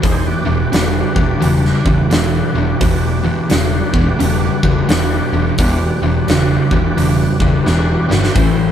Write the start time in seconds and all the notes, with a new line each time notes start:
0.02 E1 E2 B2 D#4 G4 G#4 C5, kick, open hi-hat
0.26 F#4 G4 B4 D5
0.45 E1 E2 B2
0.72 E1 E2 C#3, snare, open hi-hat
1.15 E1 E2 B2, kick
1.41 E1 E2 C#3, open hi-hat
1.65 snare
1.85 E1 E2 C#3, kick
2.11 E1 E2 B2, snare, open hi-hat
2.55 E1 E2 B2
2.79 E1 E2 B2 F#4 G4 B4 D5, kick, open hi-hat
3.24 E2 B2
3.50 E1 E2 C#3, snare, open hi-hat
3.93 E1 E2 B2, kick
4.19 E1 E2 C#3, open hi-hat
4.63 E1 E2 C#3, kick
4.88 E1 E2 B2, snare, open hi-hat
5.32 E1 E2 B2
5.58 E1 E2 B2 F#4 G4 B4 D5, kick, open hi-hat
6.02 E1 E2 B2
6.28 E1 E2 C#3, snare, open hi-hat
6.71 E1 E2 B2, kick
6.97 E1 E2 C#3, open hi-hat
7.40 E1 E2 C#3, kick
7.66 E1 E2 B2, snare
8.09 G1 E2 B2, snare
8.24 snare
8.33 A1 A2 E3 E4 B4 C5 G5, kick, open hi-hat